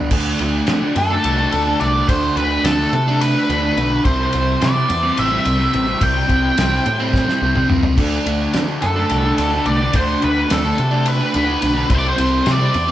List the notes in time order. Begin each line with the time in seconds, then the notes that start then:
Already playing: G3 B3 D4
0.11 D2 D3 A3 D4 F#4 D5, kick, crash
0.39 D2 D3 A3 D4, snare, ride
0.67 D3 A3 D4, snare, ride
0.81 A3 D4
0.96 F#2 A4, muted distorted electric guitar stroke, snare, ride
1.10 A3 D4
1.24 C2, ride
1.38 A3 D4
1.52 D2 D3 A3 D4, ride
1.66 A3 D4
1.80 C2 D3 A3 D4 D5, snare, ride
1.95 A3 D4
2.08 D2 D3 A3 D4 C5 E5, kick, ride
2.36 D2 D3 A3 B4, ride
2.41 D4
2.64 D2 D3 A3 D4 A4, snare, ride
2.79 A3 D4
2.93 C3, muted distorted electric guitar stroke, ride
3.08 A3 D4
3.21 B4, snare, ride
3.35 A3 D4
3.49 D2 D3 A3 D4, ride
3.62 A3 D4
3.77 B1 D3 A3 D4, ride
3.91 A3 D4
4.04 C2 C3 G3 C4 E4 C5, kick, ride
4.33 C2 C3 G3 C4, ride
4.60 C3 G3 C4 D5, snare, ride
4.75 G3 C4
4.88 E2, muted distorted electric guitar stroke, ride
5.02 G3 C4
5.17 A1 E5, snare, ride
5.30 G3 C4
5.45 C2 C3 G3 C4, ride
5.58 G3 C4
5.72 A1 C3 G3 C4, ride
5.87 G3 C4
6.00 C2 C3 G3 C4 G5, kick, ride
6.28 C2 C3 G3 C4, kick, ride
6.56 C2 C3 G3 C4, snare, ride
6.70 G3 C4
6.85 A2, muted distorted electric guitar stroke, ride
6.99 G3 C4
7.14 kick, snare
7.27 G3 C4, snare
7.40 C2 C3 G3 C4
7.55 G3 C4, mid tom
7.69 C#2 C3 G3 C4, mid tom
7.82 G3 C4, floor tom
7.97 D2 D3 A3 D4 F#4 D5, kick, crash
8.25 D2 D3 A3 D4, ride
8.53 D3 A3 D4, snare, ride
8.66 A3 D4
8.82 F#2 A4, muted distorted electric guitar stroke, snare, ride
8.96 A3 D4
9.10 C2, snare, ride
9.24 A3 D4
9.38 D2 D3 A3 D4, snare, ride
9.52 A3 D4
9.65 C2 D3 A3 D4 D5, ride
9.80 A3 D4
9.93 D2 D3 A3 D4 C5, kick, ride
10.21 D2 D3 A3 D4 B4, ride
10.49 D2 D3 A3 D4 A4, snare, ride
10.63 A3 D4
10.77 C3, muted distorted electric guitar stroke, ride
10.91 A3 D4
11.06 B4, ride
11.19 A3 D4
11.33 D2 D3 A3 D4, ride
11.46 A3 D4
11.61 B1 D3 A3 D4, ride
11.75 A3 D4
11.88 C2 C3 G3 C4 E4 C5, kick, ride
11.95 C5 D5
12.09 C5
12.16 C2 C3 G3 C4, ride
12.44 C3 G3 C4, snare, ride
12.52 D5
12.58 G3 C4
12.74 E2, muted distorted electric guitar stroke, ride
12.87 C4